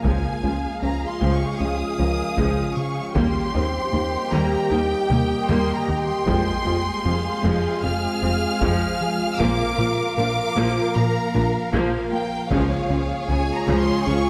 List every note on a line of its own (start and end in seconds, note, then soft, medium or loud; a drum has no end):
0.03 0.12 C#2 medium
0.03 0.28 C#2 medium
0.03 0.13 C#2 medium
0.03 0.28 C#3 medium
0.03 3.12 F3 medium
0.03 0.41 F3 soft
0.03 0.40 G#3 soft
0.03 3.12 G#3 medium
0.03 3.16 C#4 medium
0.03 3.12 F4 medium
0.03 3.12 G#4 medium
0.03 3.16 G#4 medium
0.03 2.34 G#4 soft
0.03 3.11 F5 medium
0.03 0.81 G#5 medium
0.03 taiko medium
0.43 0.51 C#2 soft
0.43 0.67 C#2 medium
0.43 0.52 C#2 soft
0.43 0.52 F3 soft
0.43 0.67 C#4 medium
0.43 0.52 F4 soft
0.82 0.90 C#2 soft
0.82 1.06 C#2 medium
0.82 0.91 C#2 soft
0.82 0.90 F3 soft
0.82 0.90 C#4 soft
0.82 1.06 C#4 soft
0.82 1.07 A#5 medium
1.08 1.34 C6 medium
1.20 1.29 C#2 medium
1.20 1.45 C#2 medium
1.20 1.30 C#2 medium
1.20 1.45 C#3 medium
1.20 1.57 F3 medium
1.20 1.57 G#3 medium
1.33 1.60 C#6 medium
1.59 1.84 C#2 medium
1.59 1.68 C#2 soft
1.59 1.69 C#2 soft
1.59 1.68 F3 soft
1.59 1.84 C#4 soft
1.59 1.68 F4 soft
1.59 2.77 D#6 medium
1.98 2.07 C#2 soft
1.98 2.23 C#2 medium
1.98 2.08 C#2 soft
1.98 2.06 F3 soft
1.98 2.23 F3 medium
1.98 2.06 C#4 soft
1.98 4.29 A#4 soft
2.37 2.61 C#2 medium
2.37 2.46 C#2 medium
2.37 2.61 C#3 medium
2.37 2.74 F3 medium
2.37 2.74 G#3 medium
2.37 taiko medium
2.77 3.00 C#3 medium
2.77 3.16 C#6 medium
3.15 3.24 D#2 medium
3.15 3.39 D#2 medium
3.15 3.39 D#3 medium
3.15 3.52 G3 medium
3.15 6.28 G3 medium
3.15 3.52 A#3 medium
3.15 6.10 A#3 medium
3.15 6.28 A#3 medium
3.15 6.23 G4 medium
3.15 6.10 G4 medium
3.15 6.28 G4 medium
3.15 6.28 D#5 medium
3.15 7.05 G5 medium
3.15 4.30 C6 medium
3.15 taiko medium
3.54 3.63 D#2 soft
3.54 3.78 D#2 medium
3.54 3.63 D#2 soft
3.54 3.62 A#3 soft
3.54 5.85 C4 soft
3.54 3.62 D#4 soft
3.54 3.78 D#4 medium
3.54 5.85 C5 soft
3.93 4.01 D#2 soft
3.93 4.17 D#2 medium
3.93 4.02 D#2 soft
3.93 4.01 A#3 soft
3.93 4.17 D#4 medium
4.32 4.40 D#2 medium
4.32 4.41 D#2 medium
4.32 4.56 D#2 medium
4.32 4.56 D#3 medium
4.32 4.69 G3 medium
4.32 4.68 A#3 medium
4.32 4.72 A#5 medium
4.71 4.95 D#2 medium
4.71 4.80 D#2 soft
4.71 4.80 D#2 medium
4.71 4.79 A#3 soft
4.71 4.79 D#4 soft
4.71 4.95 D#4 medium
4.71 5.50 G5 medium
5.10 5.34 D#2 medium
5.10 5.18 D#2 medium
5.10 5.19 D#2 soft
5.10 5.33 G3 medium
5.10 5.18 A#3 medium
5.10 taiko mid medium
5.48 5.57 D#2 medium
5.48 5.73 D#2 medium
5.48 5.57 D#2 medium
5.48 5.72 D#3 medium
5.48 5.86 G3 medium
5.48 5.86 A#3 medium
5.48 5.75 C6 medium
5.48 taiko low-mid medium
5.75 6.01 A#5 medium
5.88 6.12 D#3 medium
5.88 taiko low medium
6.01 7.83 C6 medium
6.26 6.35 F1 medium
6.26 6.35 F2 medium
6.26 6.51 F2 medium
6.26 6.63 F3 medium
6.26 6.50 F3 medium
6.26 6.63 G#3 medium
6.26 9.35 G#3 medium
6.26 9.39 G#3 medium
6.26 9.39 C4 medium
6.26 12.33 F4 medium
6.26 12.50 F4 medium
6.26 9.35 G#4 medium
6.26 12.50 F5 medium
6.26 8.57 G5 medium
6.26 taiko medium
6.66 6.74 F1 medium
6.66 6.74 F2 soft
6.66 6.90 F2 medium
6.66 6.74 F3 medium
6.66 6.74 F4 soft
6.66 6.90 F4 medium
7.05 7.14 F1 soft
7.05 7.13 F2 medium
7.05 7.29 F2 medium
7.05 7.13 F3 soft
7.05 7.13 C4 soft
7.05 7.29 F4 medium
7.05 12.51 F5 medium
7.44 7.53 F1 medium
7.44 7.68 F2 medium
7.44 7.52 F2 medium
7.44 7.80 F3 medium
7.44 7.68 F3 medium
7.44 7.80 G#3 medium
7.82 7.92 F1 medium
7.82 7.91 F2 soft
7.82 8.07 F2 medium
7.82 7.91 F3 medium
7.82 7.91 F4 medium
7.82 8.07 F4 medium
7.82 9.35 F6 loud
8.22 8.31 F1 medium
8.22 8.30 F2 medium
8.22 8.46 F2 medium
8.22 8.31 F3 medium
8.22 8.46 G#3 medium
8.22 8.31 C4 medium
8.61 8.70 F1 medium
8.61 8.69 F2 medium
8.61 8.85 F2 medium
8.61 8.85 F3 medium
8.61 8.98 F3 medium
8.61 8.98 G#3 medium
8.61 taiko medium
9.01 9.24 F3 medium
9.01 11.31 G#4 medium
9.39 9.48 A#1 medium
9.39 9.63 A#2 medium
9.39 9.48 A#2 medium
9.39 12.51 F3 medium
9.39 9.76 F3 medium
9.39 12.33 A#3 medium
9.39 12.51 A#3 medium
9.39 9.63 A#3 medium
9.39 9.76 A#3 medium
9.39 12.48 A#4 medium
9.39 10.15 D6 loud
9.39 taiko medium
9.78 9.87 A#1 soft
9.78 9.86 A#2 medium
9.78 10.02 A#2 medium
9.78 9.86 F3 medium
9.78 9.86 F4 medium
9.78 10.02 A#4 medium
10.17 10.26 A#1 medium
10.17 10.26 A#2 medium
10.17 10.41 A#2 medium
10.17 10.25 F3 soft
10.17 10.26 D4 medium
10.17 10.41 A#4 medium
10.17 10.93 D6 loud
10.56 10.64 A#1 medium
10.56 10.64 A#2 medium
10.56 10.80 A#2 medium
10.56 10.92 F3 medium
10.56 10.92 A#3 medium
10.56 10.80 A#3 medium
10.94 11.04 A#1 medium
10.94 11.03 A#2 medium
10.94 11.19 A#2 medium
10.94 11.04 F3 medium
10.94 11.04 F4 medium
10.94 11.19 A#4 medium
10.94 11.73 A#5 medium
11.34 11.43 A#1 medium
11.34 11.42 A#2 medium
11.34 11.58 A#2 medium
11.34 11.42 F3 medium
11.34 11.43 D4 medium
11.34 11.58 D4 medium
11.73 11.82 A#1 medium
11.73 11.81 A#2 medium
11.73 11.97 A#2 medium
11.73 12.09 F3 medium
11.73 11.97 A#3 medium
11.73 12.10 A#3 medium
11.73 taiko medium
12.12 12.36 A#3 medium
12.12 12.48 G5 medium
12.50 12.75 C#2 medium
12.50 12.60 C#2 medium
12.50 12.74 C#3 medium
12.50 12.60 C#3 medium
12.50 12.87 F3 medium
12.50 14.30 G#3 medium
12.50 12.88 G#3 medium
12.50 14.30 C#4 medium
12.50 14.30 F4 medium
12.50 14.30 G#4 medium
12.50 14.30 C#5 medium
12.50 13.28 F5 medium
12.50 14.30 F5 medium
12.50 taiko medium
12.90 13.13 C#2 medium
12.90 12.98 C#2 medium
12.90 12.98 C#3 soft
12.90 12.98 F3 soft
12.90 13.14 C#4 medium
12.90 12.98 F4 medium
13.28 13.52 C#2 medium
13.28 13.38 C#2 medium
13.28 13.37 C#3 medium
13.28 13.37 F3 soft
13.28 13.37 C#4 soft
13.28 13.52 C#4 medium
13.28 13.55 G#5 medium
13.54 13.81 A#5 medium
13.67 13.91 C#2 medium
13.67 13.77 C#2 medium
13.67 13.76 C#3 medium
13.67 13.91 C#3 medium
13.67 14.04 F3 medium
13.67 14.04 G#3 medium
13.80 14.06 C6 medium
14.06 14.30 C#2 medium
14.06 14.16 C#2 soft
14.06 14.15 C#3 soft
14.06 14.15 F3 soft
14.06 14.30 C#4 medium
14.06 14.15 F4 soft
14.06 14.30 C#6 medium